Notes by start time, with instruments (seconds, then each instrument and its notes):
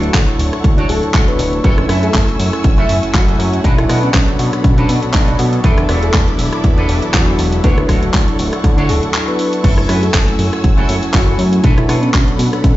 Already playing: analog synth pad F#3 D4 E4 A4 C#5, string section A3 F#5 C#6, soft synth lead F#4
0.03 closed hi-hat
0.14 analog synth bass D2, kick, clap, closed hi-hat
0.27 muted clean electric guitar stroke, closed hi-hat
0.39 analog synth bass D1, analog synth pad F#3 D4 E4 A4 C#5, muted clean electric guitar stroke, open hi-hat
0.52 muted clean electric guitar stroke, cross-stick, closed hi-hat
0.64 analog synth bass D2, kick, closed hi-hat
0.77 clean electric guitar D4 F#4 A4 C#5, closed hi-hat
0.89 analog synth bass D1, analog synth pad F#3 D4 E4 A4 C#5, soft synth lead A4, clean electric guitar A5, open hi-hat
1.02 analog synth bass D2, closed hi-hat
1.14 analog synth bass D2, clean electric guitar D4 F#4 A4 C#5 F#5, kick, clap, closed hi-hat
1.28 soft synth lead B4, closed hi-hat
1.39 analog synth bass D1, clean electric guitar C#5, open hi-hat
1.53 closed hi-hat
1.63 analog synth bass F#1, analog synth pad F#3 A3 C#4 E4 G#5, clean electric guitar E4 F#4 A4 C#5, string section F#5 C#6 E6, kick, closed hi-hat
1.78 cross-stick, closed hi-hat
1.89 analog synth bass F#2, clean electric guitar E4 F#4 A4 E5, cross-stick, open hi-hat
2.03 soft synth lead A4, closed hi-hat
2.14 analog synth bass F#1, kick, clap, closed hi-hat
2.27 muted clean electric guitar stroke, closed hi-hat
2.39 analog synth bass F#2, analog synth pad F#3 A3 C#4 E4 G#5, muted clean electric guitar stroke, open hi-hat
2.52 muted clean electric guitar stroke, cross-stick, closed hi-hat
2.64 analog synth bass F#1, kick, closed hi-hat
2.77 clean electric guitar E4 F#4 A4 E5, closed hi-hat
2.89 analog synth bass F#2, analog synth pad F#3 A3 C#4 E4 G#5, open hi-hat
3.03 analog synth bass F#1, closed hi-hat
3.13 analog synth bass F#1, clean electric guitar E4 F#4 A4 C#5, soft synth lead F#4, kick, clap, closed hi-hat
3.28 closed hi-hat
3.39 analog synth bass F#2, soft synth lead F#4, open hi-hat
3.54 closed hi-hat
3.63 analog synth bass B1, analog synth pad F#3 B3 D4 A4 C#5, clean electric guitar D4 F#4 A4 B4, string section B5, kick, closed hi-hat
3.78 soft synth lead E4, cross-stick, closed hi-hat
3.89 analog synth bass B2, clean electric guitar D4 F#4 A4 B4, soft synth lead E4, cross-stick, open hi-hat
4.03 soft synth lead C#4, closed hi-hat
4.14 analog synth bass B1, soft synth lead C#4, kick, clap, closed hi-hat
4.27 muted clean electric guitar stroke, closed hi-hat
4.38 analog synth bass B2, analog synth pad F#3 B3 D4 A4 C#5, muted clean electric guitar stroke, open hi-hat
4.52 muted clean electric guitar stroke, cross-stick, closed hi-hat
4.64 analog synth bass B1, soft synth lead C#4, kick, closed hi-hat
4.77 soft synth lead C#4, clean electric guitar D4 F#4 A4 B4, closed hi-hat
4.88 analog synth bass B2, analog synth pad F#3 B3 D4 A4 C#5, open hi-hat
5.03 analog synth bass B1, closed hi-hat
5.13 analog synth bass B1, clean electric guitar D4 F#4 A4 B4, kick, clap, closed hi-hat
5.28 closed hi-hat
5.39 analog synth bass B2, open hi-hat
5.53 closed hi-hat
5.63 analog synth bass E2, analog synth pad F#3 B3 D4 E4 A4, clean electric guitar D4 E4 A4 B4, string section A4 E5 B5 D6, kick, closed hi-hat
5.78 cross-stick, closed hi-hat
5.88 analog synth bass E1, clean electric guitar D4 E4 A4 B4, cross-stick, open hi-hat
6.03 soft synth lead A4, closed hi-hat
6.14 analog synth bass E2, kick, clap, closed hi-hat
6.27 muted clean electric guitar stroke, closed hi-hat
6.38 analog synth bass E1, analog synth pad F#3 B3 D4 E4 A4, muted clean electric guitar stroke, open hi-hat
6.52 muted clean electric guitar stroke, cross-stick, closed hi-hat
6.64 analog synth bass E2, kick, closed hi-hat
6.77 clean electric guitar D4 E4 A4 B4, closed hi-hat
6.88 analog synth bass E1, analog synth pad F#3 B3 D4 E4 A4, open hi-hat
7.02 analog synth bass E2, closed hi-hat
7.13 analog synth bass E2, clean electric guitar D4 E4 A4 C#5, soft synth lead F#4, kick, clap, closed hi-hat
7.28 closed hi-hat
7.39 analog synth bass E1, soft synth lead F#4, open hi-hat
7.52 closed hi-hat
7.63 analog synth bass D2, analog synth pad F#3 D4 E4 A4 C#5, clean electric guitar D4 F#4 A4 C#5, soft synth lead B4, string section F#5 C#6, kick, closed hi-hat
7.78 cross-stick, closed hi-hat
7.88 analog synth bass D1, clean electric guitar D4 F#4 A4 C#5, soft synth lead F#4, kick, cross-stick, open hi-hat
8.03 closed hi-hat
8.14 analog synth bass D2, kick, clap, closed hi-hat
8.26 muted clean electric guitar stroke, closed hi-hat
8.38 analog synth bass D1, analog synth pad F#3 D4 E4 A4, muted clean electric guitar stroke, open hi-hat
8.52 muted clean electric guitar stroke, cross-stick, closed hi-hat
8.64 analog synth bass D2, kick, closed hi-hat
8.76 clean electric guitar D4 F#4 A4 C#5, closed hi-hat
8.88 analog synth bass D1, analog synth pad F#3 D4 E4 A4, soft synth lead A4, open hi-hat
9.03 analog synth bass D2, closed hi-hat
9.13 clean electric guitar D4 F#4 A4 C#5, clap, closed hi-hat
9.28 soft synth lead B4, closed hi-hat
9.39 open hi-hat
9.53 closed hi-hat
9.63 analog synth bass F#1, analog synth pad F#3 A3 C#4 E4 G#5, string section A3 F#5 E6, clean electric guitar E4 F#4 A4 C#5, kick, closed hi-hat, crash
9.78 cross-stick, closed hi-hat
9.88 analog synth bass F#2, clean electric guitar E4 F#4 A4 B4, cross-stick, open hi-hat
10.02 soft synth lead A4, closed hi-hat
10.14 analog synth bass F#1, kick, clap, closed hi-hat
10.27 muted clean electric guitar stroke, closed hi-hat
10.38 analog synth bass F#2, analog synth pad F#3 A3 C#4 E4 G#5, muted clean electric guitar stroke, open hi-hat
10.52 muted clean electric guitar stroke, cross-stick, closed hi-hat
10.64 analog synth bass F#1, kick, closed hi-hat
10.77 clean electric guitar E4 F#4 A4 C#5, closed hi-hat
10.88 analog synth bass F#2, analog synth pad F#3 A3 C#4 E4 G#5, open hi-hat
11.03 analog synth bass F#1, closed hi-hat
11.14 analog synth bass F#1, clean electric guitar E4 F#4 A4 C#5, soft synth lead F#4, kick, clap, closed hi-hat
11.28 closed hi-hat
11.39 analog synth bass F#2, soft synth lead F#4, open hi-hat
11.53 closed hi-hat
11.63 analog synth bass B1, analog synth pad F#3 B3 D4 A4 C#5, clean electric guitar D4 F#4 A4 B4, string section A4 F#5 B5, kick, closed hi-hat
11.78 soft synth lead E4, cross-stick, closed hi-hat
11.88 analog synth bass B2, clean electric guitar D4 F#4 A4 B4, soft synth lead E4, cross-stick, open hi-hat
12.03 soft synth lead C#4, closed hi-hat
12.14 analog synth bass B1, soft synth lead C#4, kick, clap, closed hi-hat
12.27 muted clean electric guitar stroke, closed hi-hat
12.38 analog synth bass B2, analog synth pad F#3 B3 D4 A4, muted clean electric guitar stroke, open hi-hat
12.52 muted clean electric guitar stroke, cross-stick, closed hi-hat
12.64 analog synth bass B1, soft synth lead C#4, kick, closed hi-hat